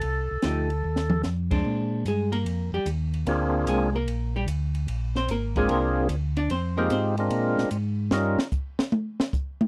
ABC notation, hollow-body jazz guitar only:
X:1
M:4/4
L:1/8
Q:"Swing" 1/4=148
K:Bbmix
V:1 name="Hollow-body jazz guitar"
z2 [F,=A,EG] z4 [_A,CD]- | [A,CD]2 [A,A] [B,B]2 [G,G] z2 | z2 [A,A] [B,B]2 [G,G] z2 | z [Cc] [B,B] [A,A] [B,B]2 z [Dd] |
[Cc] [B,B] [Cc]2 z4 | z8 |]